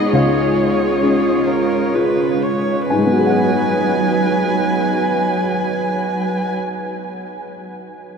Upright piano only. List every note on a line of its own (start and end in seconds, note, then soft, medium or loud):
0.00 0.16 B3 soft
0.00 0.16 D#4 soft
0.00 0.16 G#4 soft
0.00 0.15 F#5 medium
0.13 2.87 C#2 soft
0.13 1.91 F5 soft
1.03 2.53 C#4 soft
1.94 2.86 F4 soft
1.94 2.87 G#4 soft
2.90 7.25 G#2 soft
2.90 7.24 G#5 soft
2.98 7.28 G#3 soft
3.05 7.32 B3 soft
3.12 7.35 F#4 soft
3.19 7.39 G#4 soft
3.26 7.42 F#5 soft